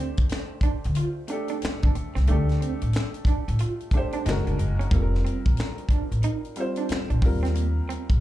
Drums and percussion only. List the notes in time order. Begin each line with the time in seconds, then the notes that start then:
0.17 kick, closed hi-hat
0.29 finger snap, snare, closed hi-hat
0.61 kick, closed hi-hat
0.84 closed hi-hat
0.95 closed hi-hat
1.28 closed hi-hat
1.48 closed hi-hat
1.62 finger snap, snare, closed hi-hat
1.82 kick, closed hi-hat
1.95 closed hi-hat
2.16 snare, closed hi-hat
2.27 closed hi-hat
2.49 snare, closed hi-hat
2.62 closed hi-hat
2.81 closed hi-hat
2.93 finger snap, snare, closed hi-hat
3.14 closed hi-hat
3.25 kick, closed hi-hat
3.48 closed hi-hat
3.59 closed hi-hat
3.80 closed hi-hat
3.91 kick, closed hi-hat
4.12 closed hi-hat
4.26 finger snap, snare, closed hi-hat
4.47 closed hi-hat
4.59 closed hi-hat
4.81 closed hi-hat
4.91 kick, closed hi-hat
5.15 snare
5.26 closed hi-hat
5.45 kick, closed hi-hat
5.57 finger snap, snare, closed hi-hat
5.78 closed hi-hat
5.89 kick, closed hi-hat
6.12 closed hi-hat
6.23 closed hi-hat
6.45 closed hi-hat
6.56 closed hi-hat
6.76 closed hi-hat
6.89 finger snap, snare, closed hi-hat
7.10 closed hi-hat
7.22 kick, open hi-hat
7.45 snare, closed hi-hat
7.55 closed hi-hat
7.90 closed hi-hat
8.10 kick, closed hi-hat